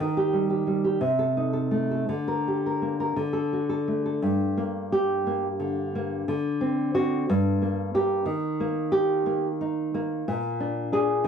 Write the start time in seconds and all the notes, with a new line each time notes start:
0.00 D#3
0.17 G4
0.33 G3
0.50 G4
0.67 G3
0.84 G4
1.01 C3
1.19 A4
1.37 D#4
1.53 A4
1.71 A3
1.91 A4
2.09 D3
2.28 A#4
2.48 G4
2.66 A#4
2.82 A#3
3.00 A#4
3.16 D3
3.33 A4
3.53 F#4
3.69 A4
3.88 A3
4.06 A4
4.22 G2
4.57 A#3
4.92 G4
5.27 A#3
5.60 D3
5.95 A#3
6.28 D3
6.61 C4
6.95 C4 F#4
7.30 G2
7.62 A#3
7.94 A#3 G4
8.26 D#3
8.60 A#3
8.92 G4
9.26 A#3
9.61 D#4
9.94 A#3
10.28 A#2
10.60 D4
10.92 D4 G#4
11.24 D#3